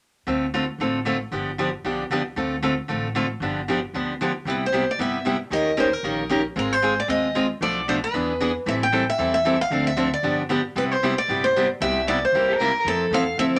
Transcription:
0.27 D2 D3 A3 C4 F4 A4
0.54 D3 A3 C4 F4 A4
0.78 A1 D3 A3 C4 F4 A4
1.05 D3 A3 C4 F4 A4
1.31 G1 D3 F3 B3 D4 G4
1.58 D3 F3 B3 D4 G4
1.84 B1 D3 F3 B3 D4 G4
2.10 C2 D3 F3 B3 D4 G4
2.36 D2 D3 A3 C4 F4 A4
2.62 D3 A3 C4 F4 A4
2.88 A1 D3 A3 C4 F4 A4
3.15 D3 A3 C4 F4 A4
3.40 G1 D3 F3 B3 D4 G4
3.68 D3 F3 B3 D4 G4
3.94 D2 D3 F3 B3 D4 G4
4.21 D3 F3 B3 D4 G4
4.45 C2 C3 G3 B3 E4 G4
4.50 B4
4.66 C5
4.72 C3 G3 B3 E4 G4
4.91 D5
4.98 G1 C3 G3 B3 E4 G4 E5
5.25 C3 G3 B3 E4 G4
5.50 D#2 D#3 A#3 C#4 G4 A#4 D#5
5.77 D#3 A#3 C#4 G4 A#4 C5
5.93 A#4
6.03 A#1 D#3 A#3 C#4 G4 A#4
6.29 D#3 A#3 C#4 G4 A#4
6.56 G#1 G#3 C4 F4 G#4 A#4
6.73 C5
6.82 G#3 C4 F4 G#4
7.00 D5
7.08 D#2 G#3 C4 F4 G#4 D#5
7.35 G#3 C4 F4 G#4
7.61 B1 B2 F3 A3 D4 A4 D5
7.88 B2 F3 A3 D4 A4 C5
8.04 B4
8.14 E2 E3 B3 D4 G#4
8.41 E3 B3 D4 G#4
8.66 A1 E3 G3 C4 E4 A4 E5
8.83 G5
8.92 E3 G3 C4 E4 A4
9.10 E5
9.18 E2 E3 G3 C4 E4 A4
9.34 E5
9.45 E3 G3 C4 E4 A4
9.61 F5
9.71 D2 D3 F3 C4 D4 A4
9.87 E5
9.97 D3 F3 C4 D4 A4
10.14 D5
10.23 G1 D3 F3 B3 D4 G4
10.49 D3 F3 B3 D4 G4
10.75 C2 C3 G3 B3 E4 G4 B4
10.91 C5
11.03 C3 G3 B3 E4 G4
11.18 D5
11.28 G1 C3 G3 B3 E4 G4
11.44 C5
11.56 C3 G3 B3 E4 G4
11.81 C2 C3 G3 B3 E4 G4 E5
12.07 C3 G3 B3 E4 G4 D5
12.25 C5
12.32 C2 C3 G3 A#3 E4 G4
12.48 G4
12.53 A4
12.59 C3 G3 A#3 E4 G4 A#4
12.85 F2 F3 C4 E4 A4
13.11 E2 F3 C4 E4 A4 F5
13.38 D2 F3 C4 E4 A4 E5

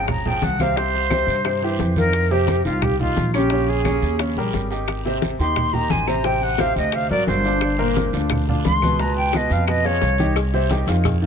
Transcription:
Already playing: G#1 F3 F4 G#4
0.08 A#5, high bongo, high conga, low conga, long guiro, claves
0.25 F3 F4 G#4 G5, high bongo, high conga, low conga
0.42 C2 F#5, high bongo, low bongo, high conga, short guiro
0.59 C3 C4 C5 F5, high bongo, high conga, short guiro, claves
0.77 C3 C4 C5, high bongo, high conga, long guiro
0.94 high bongo, high conga
1.10 C3 C4 C5, high bongo, high conga, short guiro, claves
1.27 G2, short guiro
1.45 C3 C4 C5, high bongo, high conga, long guiro, claves
1.62 E3 E4 G4, high bongo, high conga
1.79 F2, high bongo, low bongo, high conga, short guiro
1.96 D#3 D#4 F4 A#4, high bongo, high conga, short guiro
2.13 high bongo, high conga, long guiro, claves
2.30 C3 C4 G4 C5, high bongo, high conga
2.48 high bongo, high conga, short guiro
2.65 C2 D#3 D#4 F4, high conga, short guiro
2.82 G4, high bongo, high conga, low conga, long guiro, claves
3.00 D#3 D#4 F4, high bongo, high conga, low conga
3.16 A#1, high bongo, low bongo, high conga, short guiro
3.34 C#3 C#4 G4 C#5, high bongo, short guiro, claves
3.50 C#3 C#4 C#5, high bongo, high conga, long guiro
3.68 G#4, high bongo, high conga
3.85 C#3 C#4 C#5, high bongo, high conga, short guiro, claves
4.02 D#2, short guiro
4.19 C#3 C#4 C#5, high bongo, high conga, long guiro, claves
4.36 A#1 G3 G4 A#4, high bongo, high conga
4.53 G#1, high bongo, low bongo, high conga, short guiro
4.70 D#3 D#4 G4, high bongo, short guiro
4.88 high bongo, high conga, long guiro, claves
5.05 C3 C4 C5, high bongo, high conga
5.22 high bongo, high conga, short guiro
5.39 D#2 D#3 D#4 G4 C6, high conga, short guiro
5.56 high bongo, high conga, low conga, long guiro, claves
5.73 D#3 D#4 G4 A#5, high bongo, high conga, low conga
5.90 A1 G#5, high bongo, low bongo, high conga, short guiro
6.07 C3 C4 C5 A#5, high bongo, short guiro, claves
6.24 C3 C4 C5 G5, high bongo, high conga, long guiro
6.41 F#5, high bongo, high conga
6.58 C3 C4 C5 F5, high bongo, high conga, short guiro, claves
6.76 D2 D#5, short guiro
6.92 C3 C4 C5 F5, high bongo, high conga, long guiro, claves
7.10 G#1 F#3 F#4 A#4 D5, high bongo, high conga
7.27 G1 C5, high bongo, low bongo, high conga, short guiro
7.44 D3 D4 F4, high bongo, short guiro
7.61 high bongo, high conga, long guiro, claves
7.78 A#2 A#3 A#4, high bongo, high conga
7.96 high bongo, high conga, short guiro
8.13 D2 D3 D4 F4, high conga, short guiro
8.30 high bongo, high conga, low conga, long guiro, claves
8.47 D3 D4 F4, high bongo, high conga, low conga
8.65 C#2 C6, high bongo, low bongo, high conga, short guiro
8.82 B2 B3 B4, high bongo, high conga, short guiro, claves
8.99 B2 B3 B4 A#5, high bongo, high conga, long guiro
9.17 G5, high bongo, high conga
9.33 B2 B3 B4 D#5, high bongo, high conga, short guiro, claves
9.50 F2 F5, short guiro
9.67 B2 B3 B4 D#5, high bongo, high conga, long guiro, claves
9.84 F3 F4 G#4 C#5, high bongo, high conga
10.01 C2, high bongo, low bongo, high conga, short guiro
10.18 D#3 D#4 G4, high bongo, high conga, short guiro
10.36 cowbell, high conga, long guiro, claves
10.54 C3 C4 C5, high conga
10.70 D#3 D#4 G4, cowbell, high conga, short guiro
10.87 F2 D#3 D#4 F4, cowbell, high conga, short guiro
11.04 cowbell, high conga, low conga, long guiro, claves
11.22 D#3 D#4 F4, high conga

